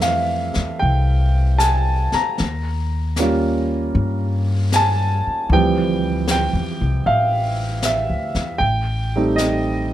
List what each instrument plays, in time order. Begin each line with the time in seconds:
Already playing: upright bass F2, grand piano E3 G3 A3 C4 E5
0.01 grand piano F5, snare, hi-hat pedal
0.54 upright bass E2, snare
0.79 upright bass C2, grand piano G5, brush sweep
1.58 grand piano G#5 A5, snare, hi-hat pedal
2.12 grand piano A#5, muted upright bass stroke, snare
2.38 upright bass D#2, brush sweep, snare
3.16 grand piano G3 A#3 C#4, snare, hi-hat pedal
3.21 grand piano F4
3.94 upright bass G2, brush sweep
4.72 grand piano G#5 A5, snare, hi-hat pedal
5.27 muted upright bass stroke
5.49 upright bass D2, grand piano E3 F3 G3 C4 G5, brush sweep
6.27 grand piano G5, snare, hi-hat pedal
6.53 upright bass E2
6.81 upright bass C2
7.05 upright bass A1, grand piano E5 F5, brush sweep
7.82 grand piano E5, snare, hi-hat pedal
8.10 upright bass D2
8.35 upright bass E2, snare
8.58 upright bass A1, grand piano G5, brush sweep
9.16 grand piano G3 A3 C4 D#4
9.36 grand piano D#5, snare, hi-hat pedal